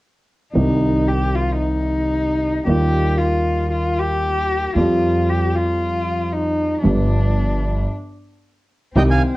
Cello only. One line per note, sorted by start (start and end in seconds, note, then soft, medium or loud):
0.54 1.09 D#4 medium
1.08 1.36 G4 medium
1.35 1.58 F4 medium
1.58 2.62 D#4 soft
2.67 3.19 G4 medium
3.18 3.71 F4 medium
3.71 4.01 F4 medium
3.99 4.76 G4 medium
4.76 5.31 F4 medium
5.29 5.57 G4 medium
5.55 6.34 F4 medium
6.32 6.82 D#4 medium
6.83 7.85 D4 soft
8.96 9.37 C4 medium